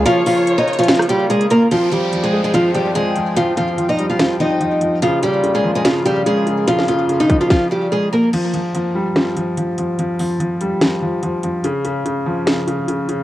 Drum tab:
CC |------------------------------------------------------------------------------------------------|------------------------------------------------------------------------------------------------|------------------------------------------------------------------------------------------------|------------------------------------------------------------------------------------------------|
HH |x-----------o-----------x-----------x--x--x--x------x---x---x-----------x-----x-----x-----------|x-----------x-----------x-----------------------x-----------x-----------x-----------x-----------|x-----------x-----------x-----------x-----------x-----------------------x-----------x-----------|x-----------x-----------x-----------------------x-----------x-----------x-----------x-----------|
SD |------------------------------------------------o-----r-----------------------------------------|------------------------------------------------------------------------------------------------|------------------------------------------------o-----------------------------------------------|------------------------------------------------o-----------------------------------------------|
BD |------------------------------------------------------------------------------------------------|------------------------------------------------------------------------------------------------|------------------------------------------------------------------------------------------------|------------------------------------------------------------------------------------------------|

CC |------------------------------------------------------------------------------------------------|x-----------------------------------------------------------------------------------------------|------------------------------------------------------------------------------------------------|------------------------------------------------------------------------------------------------|
HH |x-----------x-----------x-----------x-----------------------------------------------------------|x-----------x-----------x-----------------------x-----------x-----------x-----------x-----------|x-----------o-----------x-----------x-----------x-----------------------x-----------x-----------|x-----------x-----------x-----------------------x-----------x-----------x-----------x-----------|
SD |------o-----------------------------------------o-----------------------------------------------|------------------------------------------------o-----------------------------------------------|------------------------------------------------o-----------------------------------------------|------------------------------------------------o-----------------------------------------------|
BD |------------------------------------o-----------o-----------------------------------------------|------------------------------------------------------------------------------------------------|------------------------------------------------------------------------------------------------|------------------------------------------------------------------------------------------------|